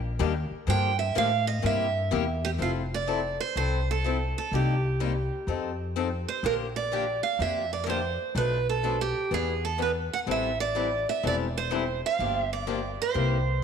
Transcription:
0.00 0.19 A#1 medium
0.19 0.48 D#2 loud
0.19 0.32 D#3 medium
0.19 0.31 G3 medium
0.19 0.32 A#3 medium
0.19 0.32 D4 medium
0.19 0.32 G4 loud
0.51 muted upright bass stroke soft
0.67 1.14 G2 medium
0.67 0.89 D3 medium
0.67 0.89 F3 medium
0.67 0.90 A#3 medium
0.67 0.90 D4 medium
0.67 0.90 G4 medium
0.67 0.98 G5 loud
0.99 1.16 E5 medium
1.15 1.62 A2 medium
1.15 1.27 D3 medium
1.15 1.27 F3 medium
1.15 1.27 A#3 medium
1.15 1.28 D4 medium
1.15 1.28 G4 medium
1.15 1.47 F5 loud
1.47 1.64 D#5 medium
1.62 2.10 G2 medium
1.62 1.85 C3 medium
1.62 1.85 G3 medium
1.62 1.85 A#3 medium
1.62 1.85 E4 medium
1.62 1.85 G4 medium
1.62 2.48 E5 medium
2.11 2.58 E2 loud
2.11 2.23 C3 medium
2.11 2.23 G3 medium
2.11 2.23 A#3 medium
2.11 2.23 E4 medium
2.11 2.24 G4 loud
2.45 2.50 G4 medium
2.58 3.36 F1 medium
2.58 2.81 F3 medium
2.58 2.81 C4 medium
2.58 2.81 E4 medium
2.58 2.70 F4 medium
2.58 2.81 A4 medium
2.94 3.40 D5 medium
3.07 3.19 F3 medium
3.07 3.19 C4 medium
3.07 3.19 E4 medium
3.07 3.19 A4 medium
3.40 3.56 C5 medium
3.56 4.32 C2 medium
3.56 3.77 F3 medium
3.56 3.77 C4 medium
3.56 3.78 E4 medium
3.56 3.78 A4 medium
3.56 3.88 C5 medium
3.91 4.37 A4 medium
4.04 4.15 F3 medium
4.04 4.16 C4 medium
4.04 4.16 E4 medium
4.04 4.16 A4 medium
4.38 4.54 A4 medium
4.52 5.28 C2 medium
4.52 4.74 C3 medium
4.52 4.74 G3 medium
4.52 4.74 A#3 medium
4.52 4.74 D#4 medium
4.52 4.74 G4 medium
4.52 5.93 G4 medium
5.00 5.11 C3 medium
5.00 5.11 G3 medium
5.00 5.11 A#3 medium
5.00 5.12 D#4 medium
5.00 5.12 G4 medium
5.47 6.24 F2 medium
5.47 5.69 F3 medium
5.47 5.69 C4 medium
5.47 5.70 D#4 medium
5.47 5.70 A4 medium
5.96 6.07 F3 medium
5.96 6.07 C4 medium
5.96 6.07 D#4 medium
5.96 6.08 A4 medium
6.28 6.45 C5 medium
6.43 7.20 A#1 medium
6.43 6.65 D3 medium
6.43 6.65 F3 medium
6.43 6.65 A#3 medium
6.43 6.66 D4 medium
6.43 6.65 G4 medium
6.43 6.54 A#4 medium
6.76 7.23 D5 medium
6.92 7.03 D3 medium
6.92 7.03 F3 medium
6.92 7.03 A#3 medium
6.92 7.04 D4 medium
6.92 7.04 G4 medium
7.23 7.40 F5 medium
7.39 8.16 F2 medium
7.39 7.61 D3 medium
7.39 7.61 F3 medium
7.39 7.61 A#3 medium
7.39 7.61 D4 medium
7.39 7.61 G4 medium
7.39 7.72 E5 medium
7.73 7.84 D5 medium
7.84 7.98 D3 medium
7.84 7.98 F3 medium
7.84 7.98 A#3 medium
7.84 7.98 D4 medium
7.84 7.99 G4 medium
7.84 7.88 A#4 medium
7.90 8.33 C5 medium
8.35 9.12 B1 medium
8.35 8.57 B2 medium
8.35 8.57 F3 medium
8.35 8.57 A3 medium
8.35 8.57 D4 medium
8.35 8.57 A4 medium
8.35 8.69 B4 medium
8.69 8.98 A4 medium
8.83 8.95 B2 medium
8.83 8.95 F3 medium
8.83 8.95 A3 medium
8.83 8.95 D4 medium
8.83 8.95 A4 medium
9.01 9.33 G4 medium
9.31 10.08 E2 medium
9.31 9.53 E3 medium
9.31 9.53 B3 medium
9.31 9.53 D4 medium
9.31 9.53 G#4 medium
9.31 9.64 G#4 medium
9.65 9.79 A4 medium
9.78 9.90 E3 medium
9.78 9.90 B3 medium
9.78 9.90 D4 medium
9.78 9.91 G#4 medium
9.82 9.90 B4 medium
10.13 10.18 F#5 medium
10.27 11.04 A1 medium
10.27 10.49 E3 medium
10.27 10.49 G3 medium
10.27 10.49 C4 medium
10.27 10.49 E4 medium
10.27 10.49 A4 medium
10.31 10.60 E5 medium
10.60 11.08 D5 medium
10.75 10.86 E3 medium
10.75 10.86 G3 medium
10.75 10.87 C4 medium
10.75 10.87 E4 medium
10.75 10.87 A4 medium
11.09 11.25 E5 medium
11.23 12.00 E1 medium
11.23 11.45 E3 medium
11.23 11.45 G3 medium
11.23 11.45 C4 medium
11.23 11.45 E4 medium
11.23 11.45 A4 medium
11.23 11.35 D5 medium
11.57 12.00 C5 medium
11.71 11.82 E3 medium
11.71 11.82 G3 medium
11.71 11.83 C4 medium
11.71 11.83 E4 medium
11.71 11.83 A4 medium
12.06 12.41 F5 medium
12.19 12.96 G1 medium
12.19 12.41 D3 medium
12.19 12.41 F3 medium
12.19 12.41 A#3 medium
12.19 12.41 D4 medium
12.19 12.41 G4 medium
12.41 12.52 E5 medium
12.53 13.01 D5 medium
12.67 12.78 D3 medium
12.67 12.78 F3 medium
12.67 12.78 A#3 medium
12.67 12.79 D4 medium
12.67 12.79 G4 medium
13.02 13.64 C5 medium
13.14 13.64 C2 medium
13.14 13.36 C3 medium
13.14 13.36 G3 medium
13.14 13.36 A#3 medium
13.14 13.37 E4 medium
13.14 13.37 G4 medium

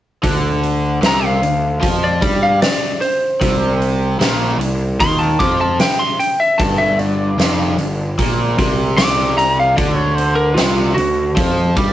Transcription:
0.23 0.99 D2 medium
0.23 1.01 D3 medium
0.23 kick medium
0.23 open hi-hat medium
0.63 open hi-hat soft
1.01 1.39 C2 medium
1.01 1.41 C3 medium
1.01 snare medium
1.01 open hi-hat medium
1.06 1.25 A#5 medium
1.25 2.01 F5 medium
1.41 1.79 D2 medium
1.41 1.74 D3 medium
1.41 open hi-hat soft
1.81 2.20 F2 medium
1.81 2.20 F3 medium
1.81 kick medium
1.81 open hi-hat medium
2.04 2.42 D5 medium
2.21 2.59 G2 medium
2.21 2.60 G3 medium
2.21 kick medium
2.21 open hi-hat soft
2.43 2.62 F5 medium
2.62 3.01 D5 medium
2.62 snare loud
2.62 open hi-hat medium
3.01 4.57 C5 medium
3.01 open hi-hat soft
3.41 4.17 C2 medium
3.41 4.19 C3 medium
3.41 kick medium
3.41 open hi-hat medium
3.82 open hi-hat soft
4.19 4.57 A#1 medium
4.19 4.59 A#2 medium
4.19 snare medium
4.19 open hi-hat medium
4.58 4.96 C2 medium
4.58 4.92 C3 medium
4.58 open hi-hat soft
4.99 5.37 D#2 medium
4.99 5.39 D#3 medium
4.99 5.20 C6 medium
4.99 kick medium
4.99 open hi-hat medium
5.19 5.39 A5 medium
5.39 5.77 F2 medium
5.39 5.79 F3 medium
5.39 5.59 D6 medium
5.39 kick medium
5.39 open hi-hat soft
5.61 5.80 A5 medium
5.79 6.00 G5 medium
5.79 snare medium
5.79 open hi-hat medium
5.99 6.19 C6 medium
6.20 6.39 G5 medium
6.20 open hi-hat soft
6.40 6.59 E5 medium
6.58 7.35 G1 medium
6.58 7.38 G2 loud
6.58 6.78 A5 medium
6.58 kick medium
6.58 open hi-hat medium
6.78 6.99 E5 medium
6.99 8.55 D5 medium
6.99 open hi-hat soft
7.37 7.75 F1 medium
7.37 7.78 F2 medium
7.37 snare medium
7.37 open hi-hat medium
7.78 8.16 G1 medium
7.78 8.11 G2 medium
7.78 open hi-hat soft
8.18 8.56 A#1 medium
8.18 8.58 A#2 medium
8.18 kick medium
8.18 open hi-hat medium
8.58 8.96 C2 medium
8.58 8.97 C3 medium
8.58 kick medium
8.58 open hi-hat soft
8.97 9.74 C2 medium
8.97 9.77 C3 medium
8.97 9.37 D6 medium
8.97 snare loud
8.97 open hi-hat medium
9.38 9.58 A#5 medium
9.38 open hi-hat soft
9.60 9.77 F5 medium
9.77 10.53 D2 medium
9.77 10.56 D3 medium
9.77 9.94 D5 medium
9.77 kick medium
9.77 open hi-hat medium
9.94 10.15 C#5 medium
10.15 10.36 C5 medium
10.15 open hi-hat soft
10.35 10.56 A#4 medium
10.54 10.93 C2 medium
10.54 10.96 C3 medium
10.54 10.94 F4 medium
10.54 snare loud
10.54 open hi-hat medium
10.94 11.34 D2 medium
10.94 11.30 D3 medium
10.94 11.35 F#4 medium
10.94 open hi-hat soft
11.36 11.74 F2 medium
11.36 11.75 F3 medium
11.36 kick medium
11.36 open hi-hat medium
11.77 11.93 G2 medium
11.77 11.93 G3 medium
11.77 kick medium
11.77 open hi-hat soft

